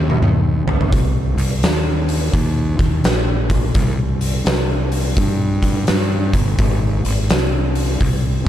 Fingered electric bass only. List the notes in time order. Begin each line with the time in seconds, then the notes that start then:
Already playing: D#2
0.22 D#2
0.67 D2
0.93 C2
1.37 C2
1.63 D#2
2.33 D#2
2.79 D#2
3.04 A#1
3.75 C2
4.47 C2
5.17 G2
5.89 G2
6.34 G1
6.59 G#1
7.06 G#1
7.31 C2
8.01 C2